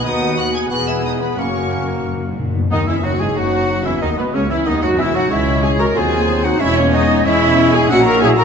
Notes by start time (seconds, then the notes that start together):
Already playing: B3
0.02 D#2 B3 D#4 F#4 B4 D#5 F#5 D#6
0.37 F#4 F#5 F#6
0.53 G#4 G#5 G#6
0.68 E1 E2 B3 F#4 G#4 B4 F#5 G#5 F#6
0.88 E4 E5 E6
1.04 D#4 D#5 D#6
1.21 B3 B4 B5
1.36 F#1 F#2 A#3 C#4 F#4 A#4 C#5 F#5 C#6
1.47 F#2
1.55 F#2
1.62 F#2
1.70 F#2
1.78 F#2
1.85 F#2
1.93 F#2
2.00 F#2
2.04 F#2
2.15 F#2
2.23 F#2
2.31 F#2
2.39 F#2 A#2
2.47 F#2
2.54 F#2 B2
2.61 F#2
2.71 D#2 B2 D#3 B3 D#4 D#5
2.86 E2 E3 C#4 E4 E5
3.03 F#1 F#2 F#3 D#4 F#4 F#5
3.19 G#2 G#3 E4 G#4 G#5
3.35 F#1 F#2 F#3 D#4 F#4 F#5
3.84 E2 E3 C#4 E4 E5
4.01 D#2 D#3 B3 D#4 D#5
4.17 B2 G#3 B3 B4
4.32 C#2 C#3 A#3 C#4 C#5
4.36 C#2
4.49 E2 E3 C#4 E4 E5
4.64 D#2 D#3 B3 D#4 D#5
4.82 F#2 F#3 D#4 F#4 F#5
4.98 E1 E2 E3 C#4 E4 E5
5.14 F#2 F#3 D#4 F#4 F#5
5.30 C#2 G#3 C#4 E4 C#5 E5
5.62 E4 G#4 C#5 G#5
5.79 F#4 A#4 A#5
5.95 D#2 F#3 C4 F4 G#4 C5 G#5
6.27 C5
6.44 D#4 F#4 F#5
6.59 E1 E2 G#3 C#4 E4 C#5 E5
6.76 A#3 C#4 C#5
6.92 B3 D#4 C#5 D#5
7.24 E1 E2 G#3 C#4 E4 C#5 E5
7.58 C#5
7.73 E4 G#4 G#5
7.89 A#1 A#2 F#3 C#4 F#4 E5 F#5
8.04 F#4 A#4 A#5
8.20 F#3 E4 G#4 E5 G#5
8.37 F#4 A#4 A#5